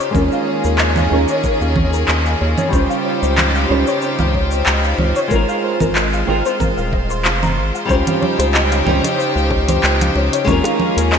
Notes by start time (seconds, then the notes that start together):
Already playing: C#3 D#4 F4 G4 C5
0.00 C#5, shaker
0.11 D#2 G#3 C#4 D#4, kick, low conga
0.15 D#3 A#3 C#4 F4 G#4 A#4, shaker
0.32 F5, shaker
0.48 C#5
0.64 D#2 A#4, shaker
0.78 D#5, clap, shaker
0.96 F5, low conga, shaker
1.10 D#2 G#3 C#4 D#4 F4 A#4 C#5
1.28 C#5, shaker
1.43 A#4, kick, shaker
1.61 D#2 F5, shaker
1.76 C#5, kick, low conga
1.93 A#4, shaker
2.08 D#2 D#5, clap, shaker
2.26 F5, shaker
2.41 D#2 C#5
2.58 C#5, low conga, shaker
2.69 C#3 G3 C#4 D#4
2.73 C#2 F4 G4 C5, kick, shaker
2.90 F5, shaker
3.05 C#5
3.23 C#2 C5, shaker
3.38 D#5, clap, low conga, shaker
3.55 F5, shaker
3.68 C#2 G3 C#4 D#4 F4 C5 C#5
3.87 C#5, shaker
4.02 C5, shaker
4.19 C#2 F5, low conga, shaker
4.35 C#5, kick
4.51 C5, shaker
4.66 C#2 D#5, clap, shaker
4.84 F5, shaker
4.98 C#2 C#5, low conga
5.16 C#5, shaker
5.28 G#1 G#3 C4 D#4 A#4, kick, shaker
5.32 G#3 F4 A#4
5.49 F5, shaker
5.63 C5
5.80 G#1 A#4, kick, low conga, shaker
5.95 D#5, clap, shaker
6.13 F5, shaker
6.26 G#1 G#3 C4 D#4 F4 A#4 C5
6.46 C5, shaker
6.60 A#4, kick, low conga, shaker
6.77 D#1 F5, shaker
6.93 D#5, kick
7.10 C6, shaker
7.25 F1 F5, clap, shaker
7.42 A#5, low conga, shaker
7.58 G#1 C6
7.75 F5, shaker
7.85 C#3 G3 C#4 D#4 G4, kick
7.89 C#2 F4 C5, high bongo, shaker
8.07 F5, closed hi-hat, low conga, shaker
8.21 C#5, high conga
8.39 C#2 C5, closed hi-hat, high bongo, shaker
8.54 D#5, clap, shaker
8.71 F5, closed hi-hat, shaker
8.85 C#2 G3 C#4 D#4 F4 C5 C#5, low conga
9.03 C#5, closed hi-hat, high bongo, high conga, shaker
9.18 C5, shaker
9.35 C#2 F5, shaker
9.50 C#5, kick, high bongo
9.68 C5, closed hi-hat, low conga, shaker
9.83 C#2 D#5, clap, shaker
10.01 F5, closed hi-hat, high conga, shaker
10.15 C#2 C#5, high bongo
10.33 C#5, closed hi-hat, shaker
10.44 D#2 D#3 G#3 A#3 C#4 D#4 A#4, kick, low conga, shaker
10.49 F4 G#4 A#4
10.64 F5, closed hi-hat, high bongo, shaker
10.80 C#5, high conga
10.97 D#2 A#4, closed hi-hat, shaker
11.12 D#5, clap, shaker